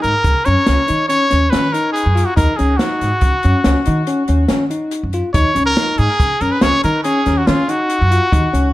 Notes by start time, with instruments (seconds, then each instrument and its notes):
Already playing: tine electric piano D#4
0.02 upright bass G#2, trumpet A#4, closed hi-hat
0.24 upright bass C#2, kick, closed hi-hat
0.45 upright bass F#2, tine electric piano C#4, trumpet C#5, closed hi-hat
0.66 upright bass C#2, tine electric piano C#4, snare, closed hi-hat
0.88 upright bass D#3, tine electric piano D#4, closed hi-hat
1.09 tine electric piano C#4, trumpet C#5, closed hi-hat
1.31 upright bass D#2, tine electric piano C#4, snare, closed hi-hat
1.50 tine electric piano C#4, trumpet B4, snare, closed hi-hat
1.54 upright bass D#3
1.73 tine electric piano D#4, trumpet A#4, closed hi-hat
1.92 trumpet G#4, closed hi-hat
2.06 upright bass F#2
2.15 tine electric piano F4, closed hi-hat
2.25 trumpet F#4
2.36 upright bass D#2, tine electric piano D#4, trumpet A#4, kick, closed hi-hat
2.57 upright bass C#2, tine electric piano C#4, trumpet G#4, closed hi-hat
2.77 tine electric piano D#4, trumpet F#4, snare, closed hi-hat
3.01 upright bass G#2, snare, closed hi-hat
3.21 upright bass C#2, kick, closed hi-hat
3.43 upright bass F#2, tine electric piano C#4, closed hi-hat
3.64 upright bass C#2, tine electric piano C#4, snare, closed hi-hat
3.86 upright bass D#3, tine electric piano D#4, closed hi-hat
4.07 tine electric piano C#4, closed hi-hat
4.28 upright bass D#2, tine electric piano C#4, closed hi-hat
4.48 upright bass D#3, tine electric piano C#4, snare, closed hi-hat
4.71 tine electric piano D#4, closed hi-hat
4.91 closed hi-hat
5.03 upright bass F#2
5.13 tine electric piano F4, closed hi-hat
5.34 upright bass D#2, tine electric piano D#4, trumpet C#5, kick, closed hi-hat
5.55 upright bass C#2, tine electric piano C#4, closed hi-hat
5.66 trumpet A#4
5.77 tine electric piano D#4, snare, closed hi-hat
5.98 upright bass G#2, trumpet G#4, closed hi-hat
6.20 upright bass C#2, kick, closed hi-hat
6.41 upright bass F#2, tine electric piano C#4, trumpet A#4, closed hi-hat
6.52 trumpet B4
6.61 upright bass C#2, tine electric piano C#4, trumpet C#5, snare, closed hi-hat
6.83 upright bass D#3, tine electric piano D#4, trumpet A#4, closed hi-hat
7.04 tine electric piano C#4, trumpet G#4, closed hi-hat
7.26 upright bass D#2, tine electric piano C#4, snare, closed hi-hat
7.37 trumpet F#4
7.46 upright bass D#3, tine electric piano C#4, trumpet F4, snare, closed hi-hat
7.69 tine electric piano D#4, trumpet F#4, closed hi-hat
7.90 closed hi-hat
8.02 upright bass F#2
8.11 tine electric piano F4, closed hi-hat
8.32 upright bass D#2, tine electric piano D#4, kick, closed hi-hat
8.53 upright bass C#2, tine electric piano C#4, closed hi-hat